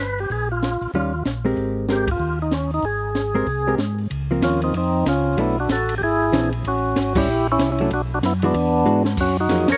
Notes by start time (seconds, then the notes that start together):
Already playing: G1 B4
0.18 G4, open hi-hat
0.30 A#1 G#4, kick, open hi-hat
0.52 F4
0.63 snare, closed hi-hat
0.81 A#1, open hi-hat
0.94 D#2 D#3 G3 C#4 F4, kick, open hi-hat
1.25 A#1, snare, closed hi-hat
1.45 G#3 C4 G4 A#4, open hi-hat
1.57 G#1, kick, open hi-hat
1.89 G#3 C4 G4 A#4, snare, closed hi-hat
2.08 F4, kick, ride
2.20 D#2
2.42 D#4
2.51 C#4, snare, closed hi-hat
2.71 D#4, open hi-hat
2.83 G#1 G#4, kick, open hi-hat
3.15 snare, closed hi-hat
3.35 G#3 C4 G4 A#4
3.47 C2, kick, open hi-hat
3.67 G#3 C4 G4 A#4
3.78 G#2, snare, closed hi-hat
3.98 open hi-hat
4.10 C#2, kick, ride
4.31 F3 A#3 C4
4.42 D#2 C#4 F4, kick, snare, hi-hat pedal, ride
4.62 C4 D#4, ride
4.74 F2 C4 D#4, kick, ride
5.06 C#2 C#4 F4, kick, snare, hi-hat pedal, ride
5.37 B1 F#3 A3 B3 D4 E4, kick, ride
5.60 D4 F#4
5.69 A1 F#4 A4, kick, snare, hi-hat pedal, ride
5.89 ride
5.98 G#1 G4, kick
6.03 E4 G#4
6.32 A#1 E3 C4 D4 G#4, kick, snare, hi-hat pedal, ride
6.52 ride
6.64 A1 C#4 F#4, kick, ride
6.96 G#1, kick, snare, hi-hat pedal, ride
7.15 G3 C#4 E4 G4, kick, crash
7.27 A#1
7.52 C#4 E4
7.59 C2, kick, snare, hi-hat pedal, ride
7.72 C#4 E4
7.78 F#3 A3 D4, ride
7.91 B1 D4 F#4, kick, ride
8.14 D4 F#4
8.23 F#2 B3 E4, kick, snare, hi-hat pedal, ride
8.42 E3 G#3 B3 D4 F#4, ride
8.54 E2, kick, ride
8.85 G#2 E3 G#3 D4 F#4, hi-hat pedal
9.05 snare
9.17 F#2 C#4 F#4, kick, crash
9.40 D#4 F#4
9.49 F2 F#3 A#3 F4 G#4, kick, snare, hi-hat pedal, ride
9.68 F2 A#4, snare, ride
9.72 C#5